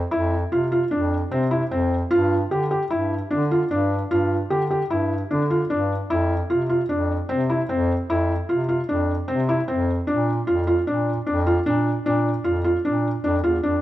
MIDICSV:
0, 0, Header, 1, 3, 480
1, 0, Start_track
1, 0, Tempo, 397878
1, 141, Time_signature, 5, 2, 24, 8
1, 16666, End_track
2, 0, Start_track
2, 0, Title_t, "Felt piano"
2, 0, Program_c, 0, 0
2, 137, Note_on_c, 0, 64, 71
2, 405, Note_off_c, 0, 64, 0
2, 627, Note_on_c, 0, 65, 64
2, 759, Note_off_c, 0, 65, 0
2, 866, Note_on_c, 0, 65, 57
2, 998, Note_off_c, 0, 65, 0
2, 1098, Note_on_c, 0, 62, 62
2, 1366, Note_off_c, 0, 62, 0
2, 1585, Note_on_c, 0, 60, 69
2, 1719, Note_off_c, 0, 60, 0
2, 1820, Note_on_c, 0, 64, 62
2, 1955, Note_off_c, 0, 64, 0
2, 2067, Note_on_c, 0, 60, 61
2, 2333, Note_off_c, 0, 60, 0
2, 2541, Note_on_c, 0, 65, 75
2, 2809, Note_off_c, 0, 65, 0
2, 3031, Note_on_c, 0, 67, 64
2, 3163, Note_off_c, 0, 67, 0
2, 3268, Note_on_c, 0, 67, 59
2, 3401, Note_off_c, 0, 67, 0
2, 3504, Note_on_c, 0, 64, 65
2, 3772, Note_off_c, 0, 64, 0
2, 3988, Note_on_c, 0, 62, 67
2, 4121, Note_off_c, 0, 62, 0
2, 4237, Note_on_c, 0, 65, 60
2, 4368, Note_off_c, 0, 65, 0
2, 4473, Note_on_c, 0, 62, 65
2, 4738, Note_off_c, 0, 62, 0
2, 4957, Note_on_c, 0, 65, 68
2, 5221, Note_off_c, 0, 65, 0
2, 5433, Note_on_c, 0, 67, 64
2, 5565, Note_off_c, 0, 67, 0
2, 5677, Note_on_c, 0, 67, 59
2, 5808, Note_off_c, 0, 67, 0
2, 5917, Note_on_c, 0, 64, 61
2, 6181, Note_off_c, 0, 64, 0
2, 6402, Note_on_c, 0, 62, 59
2, 6532, Note_off_c, 0, 62, 0
2, 6640, Note_on_c, 0, 65, 57
2, 6770, Note_off_c, 0, 65, 0
2, 6876, Note_on_c, 0, 62, 65
2, 7140, Note_off_c, 0, 62, 0
2, 7361, Note_on_c, 0, 64, 70
2, 7624, Note_off_c, 0, 64, 0
2, 7840, Note_on_c, 0, 65, 62
2, 7970, Note_off_c, 0, 65, 0
2, 8076, Note_on_c, 0, 65, 59
2, 8207, Note_off_c, 0, 65, 0
2, 8313, Note_on_c, 0, 62, 61
2, 8578, Note_off_c, 0, 62, 0
2, 8794, Note_on_c, 0, 60, 69
2, 8926, Note_off_c, 0, 60, 0
2, 9043, Note_on_c, 0, 64, 62
2, 9173, Note_off_c, 0, 64, 0
2, 9279, Note_on_c, 0, 60, 64
2, 9542, Note_off_c, 0, 60, 0
2, 9768, Note_on_c, 0, 64, 70
2, 10029, Note_off_c, 0, 64, 0
2, 10242, Note_on_c, 0, 65, 61
2, 10371, Note_off_c, 0, 65, 0
2, 10479, Note_on_c, 0, 65, 57
2, 10609, Note_off_c, 0, 65, 0
2, 10722, Note_on_c, 0, 62, 64
2, 10984, Note_off_c, 0, 62, 0
2, 11194, Note_on_c, 0, 60, 63
2, 11325, Note_off_c, 0, 60, 0
2, 11446, Note_on_c, 0, 64, 65
2, 11574, Note_off_c, 0, 64, 0
2, 11676, Note_on_c, 0, 60, 64
2, 11939, Note_off_c, 0, 60, 0
2, 12150, Note_on_c, 0, 62, 71
2, 12415, Note_off_c, 0, 62, 0
2, 12632, Note_on_c, 0, 65, 67
2, 12763, Note_off_c, 0, 65, 0
2, 12874, Note_on_c, 0, 65, 62
2, 13005, Note_off_c, 0, 65, 0
2, 13116, Note_on_c, 0, 62, 65
2, 13379, Note_off_c, 0, 62, 0
2, 13591, Note_on_c, 0, 62, 66
2, 13722, Note_off_c, 0, 62, 0
2, 13832, Note_on_c, 0, 65, 67
2, 13963, Note_off_c, 0, 65, 0
2, 14068, Note_on_c, 0, 62, 67
2, 14333, Note_off_c, 0, 62, 0
2, 14548, Note_on_c, 0, 62, 72
2, 14812, Note_off_c, 0, 62, 0
2, 15011, Note_on_c, 0, 65, 66
2, 15147, Note_off_c, 0, 65, 0
2, 15253, Note_on_c, 0, 65, 62
2, 15389, Note_off_c, 0, 65, 0
2, 15500, Note_on_c, 0, 62, 62
2, 15766, Note_off_c, 0, 62, 0
2, 15972, Note_on_c, 0, 62, 66
2, 16107, Note_off_c, 0, 62, 0
2, 16209, Note_on_c, 0, 65, 60
2, 16345, Note_off_c, 0, 65, 0
2, 16448, Note_on_c, 0, 62, 62
2, 16666, Note_off_c, 0, 62, 0
2, 16666, End_track
3, 0, Start_track
3, 0, Title_t, "Bass clarinet"
3, 0, Program_c, 1, 71
3, 128, Note_on_c, 1, 41, 78
3, 540, Note_off_c, 1, 41, 0
3, 619, Note_on_c, 1, 48, 65
3, 1027, Note_off_c, 1, 48, 0
3, 1093, Note_on_c, 1, 41, 71
3, 1504, Note_off_c, 1, 41, 0
3, 1587, Note_on_c, 1, 48, 77
3, 1992, Note_off_c, 1, 48, 0
3, 2063, Note_on_c, 1, 41, 77
3, 2470, Note_off_c, 1, 41, 0
3, 2546, Note_on_c, 1, 43, 81
3, 2952, Note_off_c, 1, 43, 0
3, 3018, Note_on_c, 1, 50, 70
3, 3428, Note_off_c, 1, 50, 0
3, 3508, Note_on_c, 1, 43, 69
3, 3914, Note_off_c, 1, 43, 0
3, 3986, Note_on_c, 1, 50, 81
3, 4393, Note_off_c, 1, 50, 0
3, 4475, Note_on_c, 1, 43, 80
3, 4878, Note_off_c, 1, 43, 0
3, 4962, Note_on_c, 1, 43, 78
3, 5362, Note_off_c, 1, 43, 0
3, 5425, Note_on_c, 1, 50, 64
3, 5833, Note_off_c, 1, 50, 0
3, 5913, Note_on_c, 1, 43, 67
3, 6317, Note_off_c, 1, 43, 0
3, 6405, Note_on_c, 1, 50, 81
3, 6804, Note_off_c, 1, 50, 0
3, 6884, Note_on_c, 1, 43, 76
3, 7284, Note_off_c, 1, 43, 0
3, 7360, Note_on_c, 1, 41, 77
3, 7761, Note_off_c, 1, 41, 0
3, 7834, Note_on_c, 1, 48, 62
3, 8238, Note_off_c, 1, 48, 0
3, 8314, Note_on_c, 1, 41, 66
3, 8718, Note_off_c, 1, 41, 0
3, 8801, Note_on_c, 1, 48, 76
3, 9201, Note_off_c, 1, 48, 0
3, 9281, Note_on_c, 1, 41, 79
3, 9681, Note_off_c, 1, 41, 0
3, 9754, Note_on_c, 1, 41, 80
3, 10158, Note_off_c, 1, 41, 0
3, 10239, Note_on_c, 1, 48, 68
3, 10640, Note_off_c, 1, 48, 0
3, 10718, Note_on_c, 1, 41, 72
3, 11119, Note_off_c, 1, 41, 0
3, 11199, Note_on_c, 1, 48, 83
3, 11600, Note_off_c, 1, 48, 0
3, 11682, Note_on_c, 1, 41, 77
3, 12081, Note_off_c, 1, 41, 0
3, 12178, Note_on_c, 1, 46, 81
3, 12570, Note_off_c, 1, 46, 0
3, 12644, Note_on_c, 1, 41, 72
3, 13041, Note_off_c, 1, 41, 0
3, 13115, Note_on_c, 1, 46, 73
3, 13516, Note_off_c, 1, 46, 0
3, 13582, Note_on_c, 1, 41, 83
3, 13988, Note_off_c, 1, 41, 0
3, 14062, Note_on_c, 1, 46, 80
3, 14468, Note_off_c, 1, 46, 0
3, 14540, Note_on_c, 1, 46, 79
3, 14946, Note_off_c, 1, 46, 0
3, 15008, Note_on_c, 1, 41, 70
3, 15419, Note_off_c, 1, 41, 0
3, 15486, Note_on_c, 1, 46, 68
3, 15897, Note_off_c, 1, 46, 0
3, 15971, Note_on_c, 1, 41, 78
3, 16178, Note_off_c, 1, 41, 0
3, 16209, Note_on_c, 1, 40, 66
3, 16430, Note_off_c, 1, 40, 0
3, 16447, Note_on_c, 1, 41, 67
3, 16666, Note_off_c, 1, 41, 0
3, 16666, End_track
0, 0, End_of_file